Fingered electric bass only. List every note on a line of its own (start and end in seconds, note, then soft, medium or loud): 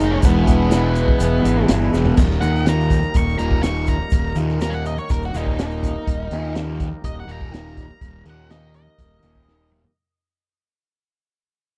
0.00 0.21 F1 medium
0.24 1.06 E1 medium
1.21 1.41 E1 medium
1.45 1.67 G#1 medium
1.69 1.91 G1 medium
1.94 2.15 E1 medium
2.18 2.39 D#1 medium
2.43 3.04 D#2 medium
3.15 3.35 D#1 loud
3.40 4.02 D#1 medium
4.12 4.33 D#1 medium
4.36 4.98 D#2 medium
5.10 5.30 D#1 loud
5.34 5.96 D#1 medium
6.08 6.28 D#1 medium
6.31 6.93 D#2 medium
7.04 7.24 D#1 medium
7.27 7.89 D#1 medium
8.01 8.22 D#1 medium
8.26 8.88 D#2 medium
8.99 9.19 D#1 medium
9.23 9.85 D#1 medium